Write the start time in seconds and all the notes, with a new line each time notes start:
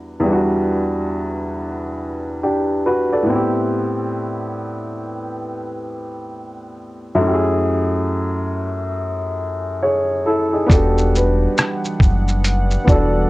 Already playing: E2 G3 B3 D4 F#4
0.20 E2 G3
0.26 B3 D4
0.32 F#4
2.43 D4 G4
2.86 F#4 B4
3.13 A4 D5
3.23 A2 B3
3.29 C4 E4
3.35 G4
7.15 F#2 A3
7.21 C#4 E4
7.28 G4
7.34 G#4
9.83 G#4 C#5
10.26 E4 A4
10.53 D#4 G#4
10.66 E1 E3 G3 B3 D4, kick
10.71 F#4 G4 A4 F#5, closed hi-hat, shaker
10.98 shaker
11.15 B4, shaker
11.58 cross-stick, closed hi-hat, shaker
11.85 shaker
12.00 F#1, kick, shaker
12.28 shaker
12.44 closed hi-hat, shaker
12.71 shaker
12.85 E1 B3 D4, kick, shaker
12.89 F#4 A4 D5